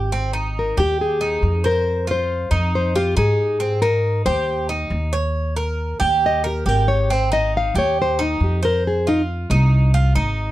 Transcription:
0.00 0.70 G#1 medium
0.00 0.10 G4 medium
0.12 0.33 C4 medium
0.33 0.76 D#4 medium
0.59 0.78 A#4 medium
0.77 1.38 D#2 loud
0.77 1.19 G4 medium
0.77 1.00 G4 medium
1.01 1.61 G#4 medium
1.21 1.63 D#4 medium
1.43 2.45 F2 medium
1.64 2.06 A#4 medium
1.64 2.06 C5 medium
2.07 2.50 F4 medium
2.07 2.50 C5 medium
2.51 3.13 F2 loud
2.51 2.93 D#4 medium
2.75 2.95 C5 medium
2.95 3.16 F4 medium
2.95 3.17 G4 medium
3.17 4.20 G#2 medium
3.17 3.59 D#4 medium
3.17 3.79 G#4 medium
3.60 3.81 C4 medium
3.82 4.25 D#4 medium
3.82 4.23 A#4 medium
4.26 4.87 D#2 loud
4.26 4.68 G4 medium
4.26 4.66 C5 medium
4.69 5.12 D#4 medium
4.90 5.94 D#2 medium
5.13 5.55 C#5 medium
5.56 5.99 A#4 medium
6.00 6.62 D#2 loud
6.00 6.43 G4 medium
6.26 6.46 D#5 medium
6.44 6.69 G4 medium
6.44 6.65 A#4 medium
6.66 7.69 G#1 medium
6.66 7.08 G4 medium
6.66 6.89 A#4 medium
6.88 7.13 C#5 medium
7.10 7.31 C4 medium
7.10 7.33 C5 medium
7.32 7.74 D#4 medium
7.32 7.54 D#5 medium
7.57 7.77 F5 medium
7.75 8.37 D#2 loud
7.75 8.18 G4 medium
7.75 7.98 C#5 medium
8.02 8.21 C5 medium
8.19 8.61 D#4 medium
8.19 8.41 D#4 soft
8.40 9.44 F2 medium
8.40 8.64 G4 medium
8.63 8.85 A#4 loud
8.63 9.05 C5 medium
8.87 9.07 G#4 medium
9.07 9.21 D#4 medium
9.07 9.49 F4 medium
9.50 10.12 C2 loud
9.50 9.93 D#4 medium
9.94 10.15 F4 medium
10.15 10.52 G#1 medium
10.15 10.52 D#4 medium

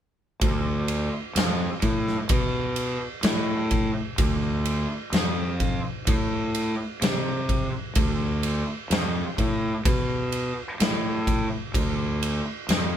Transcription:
0.41 1.08 D2 loud
0.41 kick loud
0.41 ride medium
0.88 ride medium
1.35 1.69 F2 medium
1.35 snare loud
1.35 ride loud
1.82 2.16 A2 loud
1.82 kick medium
1.82 ride medium
2.07 snare soft
2.29 2.96 B2 medium
2.29 kick loud
2.29 ride loud
2.76 ride medium
3.23 3.90 A2 medium
3.23 snare loud
3.23 ride medium
3.71 kick medium
3.71 ride medium
4.18 4.84 D2 medium
4.18 kick loud
4.18 ride medium
4.66 ride medium
5.12 5.79 F2 medium
5.12 snare loud
5.12 ride medium
5.60 kick medium
5.60 ride medium
6.07 6.74 A2 medium
6.07 kick loud
6.07 ride medium
6.55 ride medium
7.02 7.68 C3 loud
7.02 snare loud
7.02 ride medium
7.49 kick medium
7.49 ride medium
7.95 8.62 D2 loud
7.95 kick loud
7.95 ride medium
8.43 ride medium
8.90 9.23 F2 medium
8.90 snare loud
8.90 ride medium
9.38 9.71 A2 medium
9.38 kick medium
9.38 ride medium
9.85 10.51 B2 medium
9.85 kick loud
9.85 ride medium
10.32 ride medium
10.80 11.46 A2 medium
10.80 snare loud
10.80 ride medium
11.27 kick medium
11.27 ride medium
11.74 12.40 D2 loud
11.74 kick medium
11.74 ride medium
12.23 ride medium
12.69 12.97 F2 medium
12.69 snare loud
12.69 ride loud

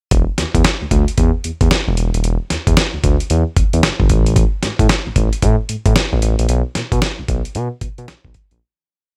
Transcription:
0.11 0.25 E1 loud
0.11 kick medium
0.11 closed hi-hat medium
0.38 0.45 E2 soft
0.38 snare medium
0.38 closed hi-hat medium
0.55 0.63 E2 loud
0.55 kick medium
0.55 closed hi-hat medium
0.64 snare loud
0.64 closed hi-hat medium
0.82 0.86 D2 soft
0.91 1.05 D2 medium
0.91 kick medium
0.91 closed hi-hat medium
1.08 closed hi-hat medium
1.18 1.31 E2 loud
1.18 kick medium
1.18 closed hi-hat medium
1.44 1.51 E2 soft
1.44 closed hi-hat medium
1.61 1.69 E2 medium
1.61 kick medium
1.61 closed hi-hat medium
1.71 snare loud
1.71 closed hi-hat medium
1.88 1.95 E1 medium
1.97 2.11 E1 medium
1.97 closed hi-hat medium
2.14 2.22 D#1 medium
2.14 closed hi-hat medium
2.24 2.37 E1 loud
2.24 closed hi-hat medium
2.50 2.57 E2 soft
2.50 snare medium
2.50 closed hi-hat medium
2.67 2.75 E2 loud
2.67 kick medium
2.67 closed hi-hat medium
2.77 snare loud
2.77 closed hi-hat medium
2.94 2.98 D2 soft
3.04 3.17 D2 loud
3.04 kick medium
3.04 closed hi-hat medium
3.20 closed hi-hat medium
3.30 3.44 E2 loud
3.30 closed hi-hat medium
3.56 3.63 E2 soft
3.56 kick medium
3.56 closed hi-hat medium
3.73 3.81 E2 medium
3.73 closed hi-hat medium
3.83 3.90 G1 soft
3.83 snare loud
3.83 closed hi-hat medium
4.00 4.12 G1 medium
4.00 kick medium
4.09 4.44 A1 loud
4.09 kick medium
4.09 closed hi-hat medium
4.26 closed hi-hat medium
4.36 kick medium
4.36 closed hi-hat medium
4.63 4.70 A2 soft
4.63 snare medium
4.63 closed hi-hat medium
4.79 4.87 A2 loud
4.79 kick medium
4.79 closed hi-hat medium
4.89 snare loud
4.89 closed hi-hat medium
5.07 5.11 A1 soft
5.16 5.29 A1 loud
5.16 kick medium
5.16 closed hi-hat medium
5.33 closed hi-hat medium
5.42 5.56 A2 loud
5.42 kick medium
5.42 closed hi-hat medium
5.69 5.76 A2 soft
5.69 closed hi-hat medium
5.86 5.94 A2 medium
5.86 kick medium
5.86 closed hi-hat medium
5.96 snare loud
5.96 closed hi-hat medium
6.13 6.20 A1 medium
6.22 6.36 A1 medium
6.22 closed hi-hat medium
6.39 6.47 A#1 medium
6.39 closed hi-hat medium
6.49 6.62 B1 loud
6.49 closed hi-hat medium
6.75 6.82 B2 soft
6.75 snare medium
6.75 closed hi-hat medium
6.92 7.00 B2 loud
6.92 kick medium
6.92 closed hi-hat medium
7.02 snare loud
7.02 closed hi-hat medium
7.19 7.23 B1 soft
7.28 7.42 B1 medium
7.28 kick medium
7.28 closed hi-hat medium
7.45 closed hi-hat medium
7.55 7.69 B2 loud
7.55 closed hi-hat medium
7.81 7.88 B2 soft
7.81 kick medium
7.81 closed hi-hat medium
7.98 8.06 B2 medium
7.98 closed hi-hat medium
8.08 8.15 B1 soft
8.08 snare loud
8.08 closed hi-hat medium
8.25 8.33 B1 medium
8.25 kick medium
8.34 kick medium
8.34 closed hi-hat medium
8.51 8.59 A#1 medium
8.51 closed hi-hat medium

